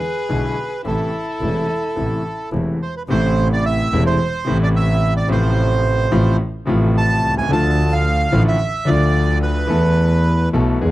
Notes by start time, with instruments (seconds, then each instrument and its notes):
Already playing: violin G#4, bandoneon B4
0.29 grand piano B1 B2 D3 G#3 B3 E4, double bass B1
0.84 grand piano A1 A2 C3 E3 A3 E4, double bass A1, violin E4, bandoneon A4
1.41 double bass E1, grand piano E1 E2 C3 E3 A3 E4
1.95 grand piano A1 A2 C3 E3 A3 E4, double bass A1
2.52 grand piano E1 E2 C3 E3 A3 E4, double bass E1
2.82 bandoneon C5
2.97 bandoneon B4
3.08 double bass A1, grand piano A1 A2 C3 E3 A3, bandoneon C5
3.12 grand piano E4
3.53 bandoneon D5
3.66 bandoneon E5
3.92 double bass E1, grand piano E1 E2 C3 E3 A3 E4
4.07 bandoneon C5
4.45 grand piano A1 A2 C3 E3 A3, double bass A1
4.49 grand piano E4
4.63 bandoneon D5
4.76 bandoneon E5
5.17 bandoneon D5
5.28 grand piano A1 A2 C3 F3 A3, double bass A1
5.32 grand piano F4, bandoneon C5
6.11 grand piano A1 A2 C3 F3 A3 F4, double bass A1
6.66 grand piano A1 A2 C3 F3 A3 F4, double bass A1
6.98 bandoneon A5
7.23 double bass C2
7.30 grand piano B1
7.37 grand piano C2, bandoneon G#5
7.42 grand piano C#2
7.50 double bass D2, grand piano D2 D3 F3 A3 F4, bandoneon A5
7.93 bandoneon F5
8.32 grand piano A1 A2 D3 F3 A3 F4, double bass A1
8.48 bandoneon E5
8.85 grand piano D2 D3 F3 A3 F4, double bass D2, bandoneon D5
9.43 bandoneon B4
9.67 grand piano E2 E3 A3 B3 A4, double bass E2
10.53 double bass B1, grand piano B1 B2 E3 A3 B3 A4
10.81 grand piano E2 E3 G#3 B3 G#4, double bass E2